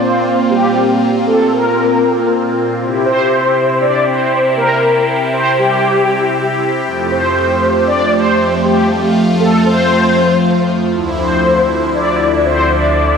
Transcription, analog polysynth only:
0.00 0.52 C5 loud
0.50 0.98 G4 medium
1.26 1.53 A4 loud
1.52 2.50 A#4 loud
3.05 3.83 C5 loud
3.81 4.04 D5 loud
4.06 4.53 C5 loud
4.57 5.04 A#4 medium
5.33 5.59 C5 loud
5.59 6.57 G4 loud
7.11 7.90 C5 loud
7.87 8.14 D5 loud
8.13 8.65 C5 loud
8.65 9.12 G4 medium
9.40 9.66 A4 loud
9.65 10.63 C5 loud
11.18 11.90 C5 loud
11.94 12.47 D5 loud
12.45 12.71 C5 loud
12.71 13.18 D5 loud

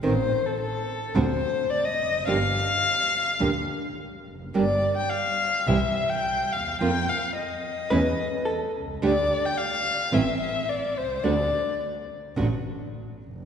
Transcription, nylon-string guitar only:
0.03 0.12 D#3 medium
0.03 0.12 A3 medium
0.03 0.12 C4 loud
1.15 1.24 D3 medium
1.15 1.24 A3 medium
1.15 1.24 C4 medium
1.15 1.24 F#4 medium
2.27 2.36 D3 medium
2.27 2.36 F3 medium
2.27 2.36 A#3 medium
2.27 2.36 D4 medium
2.27 2.37 G4 medium
3.40 3.49 D3 medium
3.40 3.49 F3 medium
3.40 3.49 A#3 medium
3.40 3.50 D4 medium
3.40 3.49 G4 medium
4.54 4.63 D3 medium
4.54 4.63 G3 medium
4.54 4.63 A#3 medium
4.54 4.64 D4 medium
4.54 4.64 G4 medium
5.67 5.76 C3 medium
5.67 5.77 E3 medium
5.67 5.77 G3 medium
5.67 5.77 C4 medium
5.67 5.77 E4 medium
6.80 6.89 F3 medium
6.80 6.89 A#3 medium
6.80 6.89 C4 medium
6.80 6.89 F4 medium
7.90 8.00 E3 medium
7.90 8.00 A3 medium
7.90 8.00 C#4 medium
7.90 8.00 E4 medium
9.02 9.11 D3 medium
9.02 9.11 A3 medium
9.02 9.12 D4 medium
9.02 9.11 G4 medium
10.12 10.21 E3 medium
10.12 10.22 A3 medium
10.12 10.22 C4 medium
10.12 10.22 E4 medium
11.23 11.33 D3 medium
11.23 11.33 A3 medium
11.23 11.33 D4 medium
11.23 11.33 F#4 medium
12.36 12.46 D3 medium
12.36 12.46 A3 medium
12.36 12.46 D4 medium
12.36 12.46 F#4 medium

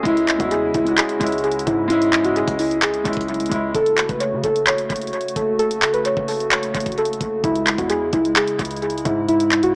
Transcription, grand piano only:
0.03 0.33 G#3 loud
0.03 0.34 C#4 loud
0.07 0.35 E4 loud
0.38 0.78 G#3 medium
0.38 0.79 C#4 medium
0.42 0.80 E4 medium
0.84 1.14 G#3 medium
0.84 1.15 C#4 medium
0.88 1.16 F#4 medium
1.19 1.78 G#3 medium
1.19 1.79 C#4 medium
1.19 1.80 E4 medium
1.88 2.18 G#3 loud
1.88 2.19 C#4 medium
1.88 2.20 E4 loud
2.23 2.91 G#3 medium
2.23 2.92 C#4 medium
2.23 2.93 E4 medium
3.04 3.43 G#3 medium
3.04 3.44 C#4 medium
3.04 3.45 E4 medium
3.49 3.70 G#3 medium
3.49 3.71 C#4 medium
3.53 3.72 E4 medium

